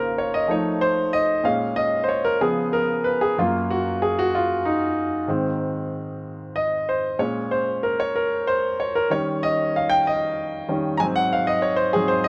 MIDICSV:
0, 0, Header, 1, 2, 480
1, 0, Start_track
1, 0, Tempo, 636943
1, 1093, Time_signature, 6, 3, 24, 8
1, 9254, End_track
2, 0, Start_track
2, 0, Title_t, "Grand piano"
2, 0, Program_c, 0, 0
2, 0, Control_c, 0, 64, 127
2, 0, Note_on_c, 0, 49, 44
2, 0, Note_on_c, 0, 58, 41
2, 0, Note_on_c, 0, 65, 48
2, 0, Note_on_c, 0, 70, 73
2, 0, Note_on_c, 0, 72, 51
2, 120, Note_off_c, 0, 70, 0
2, 139, Note_on_c, 0, 73, 69
2, 257, Note_on_c, 0, 75, 77
2, 260, Note_off_c, 0, 73, 0
2, 342, Note_off_c, 0, 49, 0
2, 342, Note_off_c, 0, 58, 0
2, 345, Note_off_c, 0, 65, 0
2, 362, Note_on_c, 0, 53, 42
2, 369, Note_on_c, 0, 57, 38
2, 373, Note_on_c, 0, 63, 50
2, 379, Note_off_c, 0, 75, 0
2, 382, Control_c, 0, 64, 0
2, 384, Note_on_c, 0, 73, 72
2, 387, Note_off_c, 0, 72, 0
2, 509, Control_c, 0, 64, 127
2, 613, Note_on_c, 0, 72, 83
2, 625, Note_off_c, 0, 73, 0
2, 852, Note_on_c, 0, 75, 80
2, 860, Note_off_c, 0, 72, 0
2, 1058, Note_off_c, 0, 53, 0
2, 1061, Note_off_c, 0, 57, 0
2, 1063, Note_off_c, 0, 63, 0
2, 1083, Note_on_c, 0, 46, 46
2, 1089, Note_on_c, 0, 56, 44
2, 1092, Note_on_c, 0, 77, 79
2, 1093, Note_on_c, 0, 61, 50
2, 1100, Note_off_c, 0, 75, 0
2, 1102, Control_c, 0, 64, 0
2, 1219, Control_c, 0, 64, 127
2, 1328, Note_on_c, 0, 75, 82
2, 1340, Note_off_c, 0, 77, 0
2, 1534, Note_on_c, 0, 72, 62
2, 1547, Note_off_c, 0, 75, 0
2, 1569, Note_off_c, 0, 72, 0
2, 1572, Note_on_c, 0, 73, 66
2, 1692, Note_on_c, 0, 70, 77
2, 1696, Note_off_c, 0, 73, 0
2, 1778, Note_off_c, 0, 46, 0
2, 1781, Note_off_c, 0, 56, 0
2, 1783, Note_off_c, 0, 61, 0
2, 1813, Note_on_c, 0, 49, 43
2, 1816, Note_off_c, 0, 70, 0
2, 1818, Note_on_c, 0, 68, 73
2, 1820, Note_on_c, 0, 53, 42
2, 1822, Note_on_c, 0, 59, 55
2, 1824, Control_c, 0, 64, 0
2, 1938, Control_c, 0, 64, 127
2, 2057, Note_on_c, 0, 70, 79
2, 2063, Note_off_c, 0, 68, 0
2, 2133, Note_off_c, 0, 49, 0
2, 2136, Note_off_c, 0, 53, 0
2, 2137, Note_off_c, 0, 59, 0
2, 2293, Note_on_c, 0, 71, 75
2, 2302, Note_off_c, 0, 70, 0
2, 2417, Note_off_c, 0, 71, 0
2, 2421, Note_on_c, 0, 68, 75
2, 2541, Note_off_c, 0, 68, 0
2, 2545, Control_c, 0, 64, 0
2, 2547, Note_on_c, 0, 42, 53
2, 2551, Note_on_c, 0, 54, 43
2, 2554, Note_on_c, 0, 58, 57
2, 2555, Note_on_c, 0, 65, 75
2, 2660, Control_c, 0, 64, 127
2, 2791, Note_off_c, 0, 65, 0
2, 2792, Note_on_c, 0, 66, 73
2, 3030, Note_off_c, 0, 66, 0
2, 3030, Note_on_c, 0, 68, 69
2, 3146, Note_off_c, 0, 68, 0
2, 3156, Note_on_c, 0, 66, 84
2, 3257, Note_off_c, 0, 66, 0
2, 3277, Note_on_c, 0, 65, 76
2, 3507, Note_on_c, 0, 63, 65
2, 3513, Note_off_c, 0, 65, 0
2, 3724, Note_off_c, 0, 63, 0
2, 3951, Note_off_c, 0, 42, 0
2, 3953, Note_off_c, 0, 54, 0
2, 3955, Note_off_c, 0, 58, 0
2, 3979, Note_on_c, 0, 44, 48
2, 3984, Control_c, 0, 64, 0
2, 3986, Note_on_c, 0, 51, 42
2, 3988, Note_on_c, 0, 60, 54
2, 4104, Control_c, 0, 64, 127
2, 4296, Note_off_c, 0, 44, 0
2, 4300, Note_off_c, 0, 51, 0
2, 4301, Note_off_c, 0, 60, 0
2, 4941, Note_on_c, 0, 75, 72
2, 5185, Note_off_c, 0, 75, 0
2, 5190, Note_on_c, 0, 72, 63
2, 5406, Note_off_c, 0, 72, 0
2, 5418, Note_on_c, 0, 46, 46
2, 5419, Note_on_c, 0, 56, 44
2, 5421, Note_on_c, 0, 73, 75
2, 5423, Control_c, 0, 64, 0
2, 5428, Note_on_c, 0, 61, 52
2, 5554, Control_c, 0, 64, 127
2, 5662, Note_on_c, 0, 72, 71
2, 5665, Note_off_c, 0, 73, 0
2, 5736, Note_off_c, 0, 46, 0
2, 5736, Note_off_c, 0, 56, 0
2, 5741, Note_off_c, 0, 61, 0
2, 5882, Note_off_c, 0, 72, 0
2, 5902, Note_on_c, 0, 70, 68
2, 6010, Note_off_c, 0, 70, 0
2, 6026, Note_on_c, 0, 73, 83
2, 6144, Note_off_c, 0, 73, 0
2, 6146, Note_on_c, 0, 70, 74
2, 6386, Note_on_c, 0, 72, 82
2, 6387, Note_off_c, 0, 70, 0
2, 6604, Note_off_c, 0, 72, 0
2, 6630, Note_on_c, 0, 73, 76
2, 6734, Note_off_c, 0, 73, 0
2, 6748, Note_on_c, 0, 70, 78
2, 6858, Note_on_c, 0, 51, 46
2, 6864, Note_on_c, 0, 55, 46
2, 6865, Note_off_c, 0, 70, 0
2, 6866, Control_c, 0, 64, 0
2, 6868, Note_on_c, 0, 73, 86
2, 6870, Note_on_c, 0, 61, 59
2, 6981, Control_c, 0, 64, 127
2, 7107, Note_on_c, 0, 75, 86
2, 7108, Note_off_c, 0, 73, 0
2, 7176, Note_off_c, 0, 51, 0
2, 7179, Note_off_c, 0, 55, 0
2, 7182, Note_off_c, 0, 61, 0
2, 7348, Note_off_c, 0, 75, 0
2, 7357, Note_on_c, 0, 77, 75
2, 7457, Note_on_c, 0, 79, 98
2, 7469, Note_off_c, 0, 77, 0
2, 7579, Note_off_c, 0, 79, 0
2, 7590, Note_on_c, 0, 75, 73
2, 8032, Note_off_c, 0, 75, 0
2, 8052, Note_on_c, 0, 51, 41
2, 8054, Note_on_c, 0, 55, 42
2, 8058, Note_on_c, 0, 61, 48
2, 8269, Note_off_c, 0, 51, 0
2, 8270, Note_off_c, 0, 55, 0
2, 8271, Note_on_c, 0, 82, 71
2, 8272, Note_off_c, 0, 61, 0
2, 8289, Note_on_c, 0, 44, 48
2, 8289, Note_on_c, 0, 80, 100
2, 8293, Note_on_c, 0, 60, 56
2, 8294, Note_on_c, 0, 54, 49
2, 8297, Note_off_c, 0, 82, 0
2, 8303, Control_c, 0, 64, 0
2, 8327, Note_off_c, 0, 80, 0
2, 8407, Note_on_c, 0, 78, 92
2, 8457, Control_c, 0, 64, 127
2, 8534, Note_off_c, 0, 78, 0
2, 8535, Note_on_c, 0, 77, 88
2, 8645, Note_on_c, 0, 75, 85
2, 8646, Note_off_c, 0, 77, 0
2, 8758, Note_on_c, 0, 73, 76
2, 8760, Note_off_c, 0, 75, 0
2, 8865, Note_on_c, 0, 72, 85
2, 8889, Note_off_c, 0, 73, 0
2, 8992, Note_on_c, 0, 68, 83
2, 8996, Note_off_c, 0, 44, 0
2, 9000, Note_off_c, 0, 60, 0
2, 9001, Note_off_c, 0, 54, 0
2, 9003, Note_off_c, 0, 72, 0
2, 9008, Note_on_c, 0, 44, 43
2, 9011, Note_on_c, 0, 60, 49
2, 9012, Note_on_c, 0, 54, 42
2, 9104, Note_on_c, 0, 72, 83
2, 9126, Note_off_c, 0, 68, 0
2, 9225, Note_off_c, 0, 44, 0
2, 9225, Note_on_c, 0, 75, 91
2, 9227, Note_off_c, 0, 60, 0
2, 9228, Note_off_c, 0, 54, 0
2, 9228, Note_off_c, 0, 72, 0
2, 9254, Note_off_c, 0, 75, 0
2, 9254, End_track
0, 0, End_of_file